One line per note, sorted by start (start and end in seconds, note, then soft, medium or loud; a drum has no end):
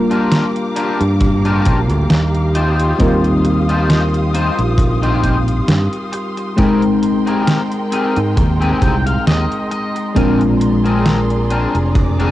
0.00 2.49 G3 medium
0.00 2.50 A#3 medium
0.00 2.50 D4 medium
0.00 2.50 F4 medium
0.00 6.54 G4 medium
0.00 2.51 A#4 loud
0.00 6.54 F5 medium
0.00 2.51 A#5 medium
0.00 2.51 D6 medium
0.11 0.43 D4 loud
0.11 0.43 F4 medium
0.11 0.44 G4 medium
0.11 0.44 A#4 loud
0.11 closed hi-hat medium
0.32 snare loud
0.32 closed hi-hat medium
0.56 closed hi-hat soft
0.76 1.00 D4 medium
0.76 1.00 F4 medium
0.76 1.01 G4 medium
0.76 1.01 A#4 medium
0.76 closed hi-hat medium
1.01 1.66 G2 medium
1.01 closed hi-hat medium
1.21 muted clean electric guitar stroke soft
1.21 kick loud
1.21 closed hi-hat medium
1.45 1.78 D4 loud
1.45 1.78 F4 loud
1.45 1.78 G4 medium
1.45 1.78 A#4 loud
1.45 closed hi-hat soft
1.65 1.90 A#1 medium
1.65 kick loud
1.65 closed hi-hat medium
1.90 2.05 D2 medium
1.90 closed hi-hat medium
2.10 2.92 D#2 loud
2.10 muted clean electric guitar stroke soft
2.10 snare loud
2.10 closed hi-hat medium
2.35 closed hi-hat soft
2.55 3.28 D#4 medium
2.55 3.28 F4 medium
2.55 3.29 G4 loud
2.55 3.29 C5 loud
2.55 10.12 C6 medium
2.55 6.54 D#6 medium
2.55 closed hi-hat medium
2.79 closed hi-hat medium
2.98 4.49 D#2 loud
2.98 6.08 G3 medium
2.98 6.08 C4 medium
2.98 6.08 D#4 medium
2.98 6.09 F4 medium
2.98 6.09 A#4 loud
2.98 kick loud
2.98 closed hi-hat medium
3.24 closed hi-hat soft
3.45 muted clean electric guitar stroke soft
3.45 closed hi-hat medium
3.69 4.01 D#4 loud
3.69 4.02 F4 medium
3.69 4.02 G4 medium
3.69 4.02 C5 loud
3.69 closed hi-hat medium
3.90 snare loud
3.90 closed hi-hat medium
4.14 closed hi-hat soft
4.34 4.58 D#4 medium
4.34 4.59 F4 medium
4.34 4.59 G4 medium
4.34 4.59 C5 loud
4.34 closed hi-hat medium
4.59 5.60 A#1 medium
4.59 closed hi-hat medium
4.78 muted clean electric guitar stroke soft
4.78 kick loud
4.78 closed hi-hat medium
5.02 5.36 D#4 loud
5.02 5.36 F4 medium
5.02 5.36 G4 loud
5.02 5.36 C5 loud
5.02 closed hi-hat soft
5.24 kick medium
5.24 closed hi-hat medium
5.48 closed hi-hat medium
5.68 5.87 G2 loud
5.68 muted clean electric guitar stroke soft
5.68 snare loud
5.68 closed hi-hat medium
5.93 closed hi-hat soft
6.12 muted clean electric guitar stroke medium
6.12 closed hi-hat medium
6.37 muted clean electric guitar stroke soft
6.37 closed hi-hat medium
6.56 9.66 G#3 medium
6.56 10.12 G#3 medium
6.56 9.66 C4 medium
6.56 6.82 C4 loud
6.56 9.67 D#4 medium
6.56 6.82 G4 loud
6.56 6.83 G#4 medium
6.56 6.83 A#4 loud
6.56 9.67 A#4 loud
6.56 10.13 G5 medium
6.56 9.67 G5 medium
6.56 10.12 A#5 medium
6.56 kick loud
6.56 closed hi-hat medium
6.82 closed hi-hat soft
7.02 muted clean electric guitar stroke soft
7.02 closed hi-hat medium
7.27 7.59 C4 loud
7.27 7.60 G4 medium
7.27 7.60 G#4 medium
7.27 7.60 A#4 loud
7.27 closed hi-hat medium
7.47 snare loud
7.47 closed hi-hat medium
7.72 closed hi-hat soft
7.92 8.16 C4 medium
7.92 8.17 G4 medium
7.92 8.17 G#4 medium
7.92 8.17 A#4 loud
7.92 closed hi-hat medium
8.16 8.37 G#2 medium
8.16 closed hi-hat medium
8.36 8.72 D#2 medium
8.36 muted clean electric guitar stroke soft
8.36 kick loud
8.36 closed hi-hat medium
8.60 8.94 C4 loud
8.60 8.94 G4 medium
8.60 8.94 G#4 medium
8.60 8.94 A#4 loud
8.60 closed hi-hat soft
8.82 9.16 C2 loud
8.82 9.04 G5 medium
8.82 kick loud
8.82 closed hi-hat medium
9.06 9.25 F5 medium
9.06 closed hi-hat medium
9.26 9.45 D#2 loud
9.26 9.68 D#5 medium
9.26 muted clean electric guitar stroke soft
9.26 snare loud
9.26 closed hi-hat medium
9.52 closed hi-hat soft
9.71 10.13 D#5 medium
9.71 muted clean electric guitar stroke medium
9.71 closed hi-hat medium
9.95 muted clean electric guitar stroke soft
9.95 closed hi-hat medium
10.14 11.65 A#1 loud
10.14 12.31 G#3 medium
10.14 12.31 C4 medium
10.14 10.40 C4 loud
10.14 10.40 D4 loud
10.14 12.31 D4 medium
10.14 12.31 F4 medium
10.14 12.31 G#4 medium
10.14 10.41 G#4 medium
10.14 10.41 A#4 loud
10.14 12.31 A#4 loud
10.14 12.31 D5 medium
10.14 12.31 A#5 medium
10.14 11.93 C6 medium
10.14 kick loud
10.14 closed hi-hat medium
10.41 closed hi-hat soft
10.60 muted clean electric guitar stroke soft
10.60 closed hi-hat medium
10.85 11.18 C4 medium
10.85 11.18 D4 medium
10.85 11.18 G#4 medium
10.85 11.18 A#4 loud
10.85 closed hi-hat soft
11.06 snare loud
11.06 closed hi-hat medium
11.30 closed hi-hat soft
11.50 11.75 C4 medium
11.50 11.75 D4 medium
11.50 11.75 G#4 medium
11.50 11.75 A#4 loud
11.50 closed hi-hat medium
11.75 12.31 F1 medium
11.75 closed hi-hat medium
11.95 12.31 D6 medium
11.95 muted clean electric guitar stroke soft
11.95 kick loud
11.95 closed hi-hat medium
12.19 12.31 C4 loud
12.19 12.31 D4 loud
12.19 12.31 G#4 medium
12.19 12.31 A#4 loud
12.19 closed hi-hat soft